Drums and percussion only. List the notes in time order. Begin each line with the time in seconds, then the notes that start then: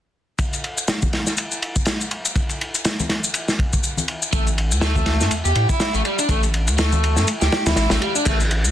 0.39 kick, ride, shaker
0.53 ride, shaker
0.64 ride
0.78 shaker
0.88 snare, ride, shaker
1.02 kick, high conga, shaker
1.13 snare, ride
1.27 snare, shaker
1.37 ride, shaker
1.52 shaker
1.62 ride
1.76 kick, shaker
1.85 snare, ride, shaker
2.01 shaker
2.11 ride
2.25 ride, shaker
2.36 kick, ride, shaker
2.49 ride, shaker
2.61 ride
2.75 ride, shaker
2.85 snare, ride, shaker
3.00 high conga, shaker
3.09 snare, ride
3.24 shaker
3.34 ride, shaker
3.48 snare, shaker
3.59 kick, ride
3.73 kick, shaker
3.83 shaker
3.97 high conga, shaker
4.08 ride
4.22 shaker
4.33 kick, ride, shaker
4.47 ride, shaker
4.58 ride
4.72 shaker
4.81 snare, ride, shaker
4.95 kick, high conga, shaker
5.06 snare, ride
5.21 snare, shaker
5.31 ride, shaker
5.45 shaker
5.55 ride
5.69 kick, shaker
5.80 snare, ride, shaker
5.94 shaker
6.05 ride
6.19 ride, shaker
6.29 kick, ride, shaker
6.43 ride, shaker
6.54 ride
6.68 ride, shaker
6.78 snare, ride, shaker
6.92 high conga, shaker
7.04 ride
7.16 snare, shaker
7.27 ride, shaker
7.42 snare, shaker
7.52 snare, ride
7.66 snare, ride, high conga, shaker
7.76 snare, ride, shaker
7.90 snare, ride, high conga, shaker
8.02 ride
8.16 shaker
8.25 kick, crash, ride, shaker
8.40 ride, shaker
8.51 ride
8.65 shaker